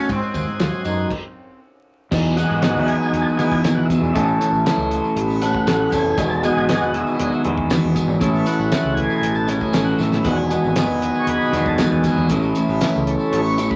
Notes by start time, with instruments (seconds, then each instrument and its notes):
Already playing: tonewheel organ F#4
0.08 clean electric guitar G#2, fingered electric bass G#2, tonewheel organ C5 D#5 G#5, kick, ride, tambourine
0.13 sitar C4
0.22 tambourine
0.34 fingered electric bass D#2, kick, ride, tambourine
0.48 fingered electric bass G#2
0.59 fingered electric bass D#2, clean electric guitar F#3, snare, ride, tambourine
0.72 tambourine
0.85 fingered electric bass F#2, clean electric guitar D#4, ride, tambourine
1.11 kick, crash
2.11 clean electric guitar E2 B2 E3 B3 D#4 G#4, fingered electric bass E2, tanpura F#3, kick, crash, tambourine
2.25 tambourine
2.36 clean electric guitar E3 B3 D#4 G#4, tonewheel organ F#3 G#3 D#4 F#4, closed hi-hat, tambourine
2.50 fingered electric bass G#2, tambourine
2.62 clean electric guitar E3 B3 D#4 G#4, snare, closed hi-hat, tambourine
2.75 fingered electric bass E2, tanpura B3, tambourine
2.86 tonewheel organ G#4, closed hi-hat, tambourine
3.02 tambourine
3.13 fingered electric bass E2, closed hi-hat, tambourine
3.22 tonewheel organ A4
3.28 tambourine
3.37 fingered electric bass E3, clean electric guitar E3 B3 D#4 G#4, tonewheel organ F#3 G#3 D#4 G#4, tanpura B3, closed hi-hat, tambourine
3.52 kick
3.64 clean electric guitar E2 B2 E3 B3 D#4 G#4, snare, closed hi-hat, tambourine
3.74 fingered electric bass E3, tonewheel organ F#4
3.85 tonewheel organ E4
3.90 clean electric guitar E3 B3 D#4 G#4, kick, closed hi-hat, tambourine
3.98 fingered electric bass E2, tanpura B2
4.04 tambourine
4.13 fingered electric bass A1, clean electric guitar A2 E3 A3 C#4 A4, tonewheel organ E3 A3 C#4 D#4, kick, closed hi-hat, tambourine
4.27 tonewheel organ C#4, tambourine
4.40 clean electric guitar A3 C#4 A4, snare, closed hi-hat, tambourine
4.52 fingered electric bass A1, tambourine
4.60 tanpura F#3
4.65 clean electric guitar E3 A3 C#4 A4, snare, closed hi-hat, tambourine
4.78 fingered electric bass C#2, tambourine
4.91 closed hi-hat, tambourine
5.04 tambourine
5.16 fingered electric bass A1, closed hi-hat, tambourine
5.23 tanpura B3
5.30 tambourine
5.42 clean electric guitar A3 C#4 A4, tonewheel organ F#4, closed hi-hat, tambourine
5.54 kick
5.67 fingered electric bass A1, clean electric guitar A2 E3 A3 C#4 A4, snare, closed hi-hat, tambourine
5.84 tanpura B3
5.91 fingered electric bass F1, clean electric guitar A3 C#4 A4, tonewheel organ G#4, kick, closed hi-hat, tambourine
6.17 fingered electric bass E1, clean electric guitar E2 B2 D#3 G#3 B3 G#4, kick, closed hi-hat, tambourine
6.30 tonewheel organ A4, tambourine
6.43 tanpura B2, clean electric guitar D#3 G#3 B3 G#4, tonewheel organ F#3 G#3 D#4 G#4, closed hi-hat, tambourine
6.56 fingered electric bass G#1, tambourine
6.68 clean electric guitar D#3 G#3 B3 G#4, snare, closed hi-hat, tambourine
6.82 fingered electric bass E1, tonewheel organ F#4, tambourine
6.94 tonewheel organ E4, snare, closed hi-hat, tambourine
7.07 tanpura F#3, tambourine
7.20 fingered electric bass E1, tonewheel organ F#3 G#3 D#4, closed hi-hat, tambourine
7.32 tonewheel organ E4, tambourine
7.44 fingered electric bass E2, clean electric guitar D#3 G#3 B3 G#4, closed hi-hat
7.57 kick
7.69 clean electric guitar E2 B2 D#3 G#3 B3 G#4, tanpura B3, snare, closed hi-hat, tambourine
7.84 fingered electric bass E2
7.95 clean electric guitar D#3 G#3 B3 G#4, kick, closed hi-hat, tambourine
8.08 fingered electric bass G#1, tambourine
8.20 fingered electric bass A1, clean electric guitar A2 E3 A3 C#4 E4, tonewheel organ E3 A3 C#4, kick, closed hi-hat, tambourine
8.32 tanpura B3, tambourine
8.46 clean electric guitar A3 C#4 E4, tonewheel organ F#4, closed hi-hat, tambourine
8.59 fingered electric bass A1, tambourine
8.72 clean electric guitar E3 A3 C#4 E4, snare, closed hi-hat, tambourine
8.84 fingered electric bass C#2
8.94 tanpura B2, tonewheel organ G#4, kick, closed hi-hat, tambourine
9.10 tambourine
9.21 fingered electric bass A1, closed hi-hat, tambourine
9.35 tonewheel organ A4, tambourine
9.47 clean electric guitar A3 C#4 E4, tonewheel organ G#4, snare, closed hi-hat, tambourine
9.56 tanpura F#3
9.60 kick, tambourine
9.73 fingered electric bass A1, clean electric guitar A2 E3 A3 C#4 E4, snare, closed hi-hat, tambourine
9.85 tonewheel organ F#4, tambourine
9.98 fingered electric bass A2, clean electric guitar C#4 E4, tonewheel organ E4, snare, tambourine
10.02 clean electric guitar A3
10.12 snare, tambourine
10.18 tanpura B3
10.24 fingered electric bass E1, clean electric guitar E2 B2 D#3 G#3 B3 G#4, tonewheel organ F#4, kick, closed hi-hat, tambourine
10.37 tonewheel organ G#4
10.50 clean electric guitar D#3 G#3 B3 G#4, tonewheel organ F#3 D#4 G#4, closed hi-hat, tambourine
10.64 fingered electric bass G#1, tambourine
10.76 clean electric guitar D#3 G#3 B3 G#4, snare, closed hi-hat, tambourine
10.81 tanpura B3
10.89 fingered electric bass E1, tambourine
11.02 closed hi-hat, tambourine
11.15 tambourine
11.20 tonewheel organ C#5
11.26 fingered electric bass E1, tonewheel organ B4, closed hi-hat, tambourine
11.41 tanpura B2, tambourine
11.53 fingered electric bass E2, clean electric guitar D#3 G#3 B3 G#4, closed hi-hat, tambourine
11.66 tonewheel organ A4, kick
11.78 clean electric guitar E2 B2 D#3 G#3 B3 G#4, snare, closed hi-hat, tambourine
11.91 fingered electric bass E2
12.04 clean electric guitar D#3 G#3 B3 G#4, tanpura F#3, tonewheel organ G#4, kick, closed hi-hat, tambourine
12.17 fingered electric bass E2
12.29 fingered electric bass A1, clean electric guitar A2 E3 A3 C#4 E4, kick, closed hi-hat, tambourine
12.42 tambourine
12.55 clean electric guitar C#4 E4, closed hi-hat, tambourine
12.59 clean electric guitar A3
12.66 fingered electric bass A1, tanpura B3, tambourine
12.81 clean electric guitar E3 A3 C#4 E4, snare, closed hi-hat, tambourine
12.94 fingered electric bass C#2, snare, tambourine
13.06 tonewheel organ E3 A3 C#4, closed hi-hat, tambourine
13.19 tambourine
13.30 fingered electric bass A1, tanpura B3, tonewheel organ C#5, closed hi-hat, tambourine
13.45 tambourine
13.58 clean electric guitar A3 C#4 E4, closed hi-hat, tambourine
13.63 tonewheel organ C#5
13.70 tonewheel organ B4, kick